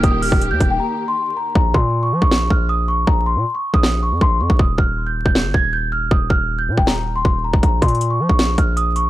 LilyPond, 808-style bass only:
\new Staff \with { instrumentName = "808-style bass" } { \clef bass \time 4/4 \key bes \dorian \tempo 4 = 158 ees,,8. ees,,8 ees,16 ees,,8 r2 | bes,,8 bes,4 f16 bes,,8. bes,,4. | bes,,8. bes,16 r8. bes,,4 f,16 bes,,8 f,16 bes,,16 | ees,,8 ees,,4~ ees,,16 ees,,8 g,,16 ees,,4. |
ees,,8 ees,,4 bes,16 ees,,4~ ees,,16 ees,,8. ees,,16 | bes,,8 bes,4 f16 bes,,8. bes,,4. | }